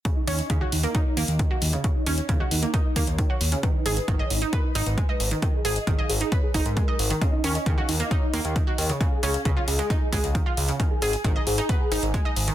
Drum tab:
HH |x-oxx-oxx-oxx-ox|x-oxx-oxx-oxx-ox|x-oxx-oxx-oxx-ox|x-oxx-oxx-oxx-ox|
BD |o---o---o---o---|o---o---o-o-o---|o---o---o---o---|o---o---o-o-o---|

HH |x-oxx-oxx-oxx-ox|x-oxx-oxx-oxx-ox|x-oxx-oxx-oxx-ox|
BD |o---o---o---o---|o---o---o-o-o---|o---o---o---o---|